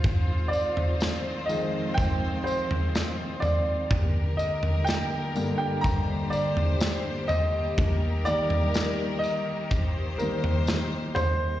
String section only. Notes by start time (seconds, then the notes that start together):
Already playing: F4
0.02 D#3 G#3 C4 C5
3.88 D3 G3 A#3 G4 A#4
5.83 C5
7.77 D#3 A#4
9.71 C5